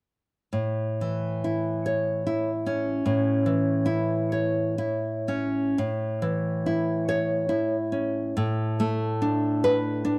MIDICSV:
0, 0, Header, 1, 2, 480
1, 0, Start_track
1, 0, Key_signature, 3, "major"
1, 0, Tempo, 913242
1, 290, Time_signature, 3, 2, 24, 8
1, 765, Tempo, 802139
1, 2205, Tempo, 910470
1, 2685, Tempo, 1003344
1, 3165, Tempo, 887574
1, 3645, Tempo, 846262
1, 5644, End_track
2, 0, Start_track
2, 0, Title_t, "Nylon-string guitar"
2, 0, Program_c, 0, 24
2, 277, Note_on_c, 0, 45, 43
2, 532, Note_on_c, 0, 52, 34
2, 758, Note_on_c, 0, 64, 36
2, 1006, Note_on_c, 0, 73, 49
2, 1243, Note_off_c, 0, 64, 0
2, 1249, Note_off_c, 0, 52, 0
2, 1250, Note_on_c, 0, 64, 37
2, 1387, Note_off_c, 0, 73, 0
2, 1488, Note_on_c, 0, 61, 36
2, 1688, Note_off_c, 0, 45, 0
2, 1722, Note_on_c, 0, 45, 47
2, 1957, Note_off_c, 0, 64, 0
2, 1964, Note_on_c, 0, 52, 41
2, 2202, Note_on_c, 0, 64, 48
2, 2206, Note_off_c, 0, 61, 0
2, 2447, Note_on_c, 0, 73, 46
2, 2684, Note_off_c, 0, 64, 0
2, 2687, Note_off_c, 0, 52, 0
2, 2690, Note_on_c, 0, 64, 48
2, 2928, Note_on_c, 0, 61, 43
2, 3146, Note_off_c, 0, 45, 0
2, 3164, Note_off_c, 0, 61, 0
2, 3168, Note_off_c, 0, 64, 0
2, 3169, Note_off_c, 0, 73, 0
2, 3169, Note_on_c, 0, 45, 48
2, 3405, Note_on_c, 0, 52, 38
2, 3645, Note_on_c, 0, 64, 43
2, 3885, Note_on_c, 0, 73, 57
2, 4107, Note_off_c, 0, 64, 0
2, 4114, Note_on_c, 0, 64, 41
2, 4116, Note_off_c, 0, 52, 0
2, 4262, Note_off_c, 0, 73, 0
2, 4358, Note_on_c, 0, 61, 41
2, 4586, Note_off_c, 0, 45, 0
2, 4604, Note_off_c, 0, 64, 0
2, 4606, Note_off_c, 0, 61, 0
2, 4611, Note_on_c, 0, 45, 50
2, 4855, Note_on_c, 0, 57, 49
2, 5093, Note_on_c, 0, 62, 50
2, 5333, Note_on_c, 0, 71, 66
2, 5557, Note_off_c, 0, 62, 0
2, 5564, Note_on_c, 0, 62, 53
2, 5568, Note_off_c, 0, 57, 0
2, 5644, Note_off_c, 0, 45, 0
2, 5644, Note_off_c, 0, 62, 0
2, 5644, Note_off_c, 0, 71, 0
2, 5644, End_track
0, 0, End_of_file